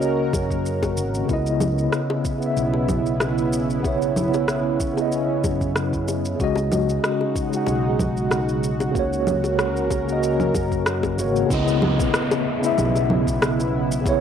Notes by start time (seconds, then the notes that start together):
Already playing: C#2 C#3 A#3 C#4 F#4 A#4 C#5 D#5
0.02 shaker
0.33 F#2, kick, high bongo, shaker
0.51 kick, shaker
0.66 shaker
0.82 kick, high bongo, shaker
0.97 G#1, shaker
1.15 shaker
1.26 C#2 C#3 B3, kick, shaker
1.30 B3 E4 D#5
1.46 shaker
1.60 high bongo, low conga, shaker
1.78 shaker
1.93 cross-stick, shaker
2.10 high bongo
2.25 kick, shaker
2.38 C#3 B3, shaker
2.44 E4 E5
2.57 B1, shaker
2.74 high bongo
2.89 kick, low conga, shaker
3.06 shaker
3.20 cross-stick, high bongo, shaker
3.38 shaker
3.53 shaker
3.70 shaker
3.80 C#3 B3
3.84 C#4 E4 C#5, kick, high bongo, shaker
4.02 shaker
4.16 low conga, shaker
4.34 high bongo, shaker
4.48 cross-stick, shaker
4.80 kick, shaker
4.94 C#3 B3, high bongo
4.98 E4 D#5, shaker
5.12 shaker
5.44 F#2, kick, high bongo, shaker
5.61 kick, shaker
5.76 cross-stick, shaker
5.93 kick, shaker
6.08 high bongo, shaker
6.25 shaker
6.36 C#3 G#3 D#4, kick, shaker
6.40 C#2 F#4 D#5
6.56 high bongo, shaker
6.72 low conga, shaker
6.89 shaker
7.04 cross-stick, shaker
7.21 high bongo
7.36 kick, shaker
7.49 C#3 G#3, shaker
7.54 F#4 F#5
7.66 B1, high bongo, shaker
7.99 kick, low conga, shaker
8.17 shaker
8.31 cross-stick, high bongo, shaker
8.49 shaker
8.64 shaker
8.80 high bongo, shaker
8.91 C#2 C#3 A#3 C#4 A#4, kick
8.96 F#4 C#5, shaker
9.13 shaker
9.27 low conga, shaker
9.44 high bongo, shaker
9.59 cross-stick, shaker
9.76 shaker
9.90 kick, high bongo, shaker
10.05 C#3 A#3, shaker
10.10 F#4 D#5
10.23 shaker
10.40 low conga, shaker
10.54 F#2, kick, high bongo, shaker
10.72 kick, shaker
10.86 cross-stick, shaker
11.03 kick, high bongo, shaker
11.17 G#1 C#3 A#3 F#4, shaker
11.21 C#5
11.36 shaker
11.46 C#3 B3 E4, downlifter
11.50 C#2 E4 D#5, kick, shaker
11.68 shaker
11.82 high bongo, low conga
11.99 kick, shaker
12.14 cross-stick, shaker
12.31 high bongo, shaker
12.59 C#3 B3
12.64 E4 E5, shaker
12.78 B1, low conga, shaker
12.96 high bongo, shaker
13.10 low conga
13.27 kick, shaker
13.42 cross-stick, high bongo, shaker
13.60 shaker
13.92 shaker
14.01 C#3 B3
14.06 E4 C#5, kick, high bongo, shaker